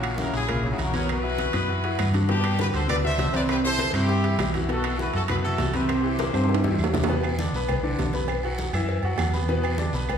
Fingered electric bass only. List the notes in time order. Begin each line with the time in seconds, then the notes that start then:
Already playing: A#1
0.33 A#1
0.78 B1
1.54 F#2
1.99 G2
2.73 D2
3.18 C2
3.93 G2
4.38 B1
5.14 F#2
5.59 C2
6.34 G2
6.78 E2
7.53 B1
7.98 B1
8.73 F#2
9.03 F#2
9.19 E2
9.93 B1